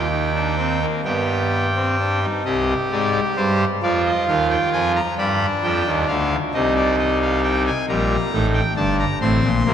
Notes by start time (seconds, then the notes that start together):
Already playing: D#2 D#3 G5
0.11 D#4
0.35 D4
0.58 C4
0.81 A#3
1.04 G2 G3 B3 G5
1.76 C4
1.99 D4
2.23 D#4
2.45 C2 C3 G4 D#5
2.91 G#2 G#3 D5
3.37 G2 G3 C5
3.83 F2 F3 F4 D5
4.06 D#5
4.28 D#2 D#3 F5
4.50 G5
4.73 F2 F3 G#5
4.96 A#5
5.18 G2 G3 D4 B5
5.63 F2 F3 G5
5.86 D#2 D#3
6.08 D2 D3 F5
6.54 C2 C3 D#4 D#5
6.76 D5
6.99 D#5
7.22 F5
7.43 G5
7.66 G#5
7.89 A#1 A#2 G3 A#5
8.32 A1 A2 D#4
8.54 G5
8.76 G1 G2 D4 A5
8.99 A#5
9.21 A1 A2 C4 C6
9.43 A#1 A#2
9.66 C2 C3 A#3